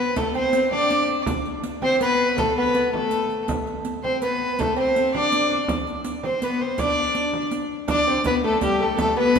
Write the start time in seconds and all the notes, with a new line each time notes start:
Already playing: B3 B4
0.00 B3
0.16 A3 A4, riq, frame drum
0.34 C4 C5, riq
0.52 C4, riq, frame drum
0.71 D4 D5, frame drum
0.90 riq, frame drum
1.09 frame drum
1.26 riq, frame drum
1.45 riq
1.63 riq, frame drum
1.82 C4 C5, frame drum
2.00 B3 B4, riq, frame drum
2.21 frame drum
2.36 A3 A4, riq, frame drum
2.54 B3 B4, frame drum
2.74 B3, riq, frame drum
2.94 A3 A4, frame drum
3.11 riq
3.30 riq
3.48 riq, frame drum
3.67 riq
3.85 riq, frame drum
4.03 C4 C5, frame drum
4.22 B3 B4, riq, frame drum
4.42 frame drum
4.59 A3 A4, riq, frame drum
4.76 C4 C5, riq
4.96 C4, riq
5.14 D4 D5, frame drum
5.32 riq, frame drum
5.50 D4, frame drum
5.68 riq, frame drum
5.87 riq
6.04 riq, frame drum
6.23 C4 C5, frame drum
6.42 B3 B4, riq, frame drum
6.61 C4 C5
6.78 D4 D5, riq, frame drum
6.97 riq
7.15 riq
7.34 frame drum
7.51 riq, frame drum
7.88 D4 D5, riq, frame drum
8.07 C4
8.24 B3 B4, riq, frame drum
8.44 A3 A4
8.61 G3 G4, riq, frame drum
8.80 A3 A4
8.97 A3 A4, riq, frame drum
9.17 B3 B4
9.35 riq, frame drum